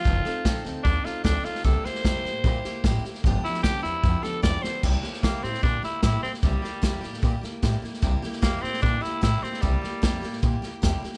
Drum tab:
CC |----------------|----------------|----------------|x---------------|
HH |----p-------p---|----p-------p---|----p-------p---|----p-------p---|
SD |o-o-o-o-o-o-o-oo|o-ooo-o-o-o-o-oo|o-ooo-o-o-o-o-o-|o-ooo-ooo-o-o-oo|
BD |o---o---o---o---|o---o---o---o---|o---o---o---o---|o---o---o---o---|

CC |----------------|----------------|----------------|
HH |----p-------p---|----p-------p---|----p-------p---|
SD |o-o-o-ooo-o-o-oo|o-ooo-ooo-o-o-oo|o-o-o-ooo-o-o-oo|
BD |o---o---o---o---|o---o---o---o---|o---o---o---o---|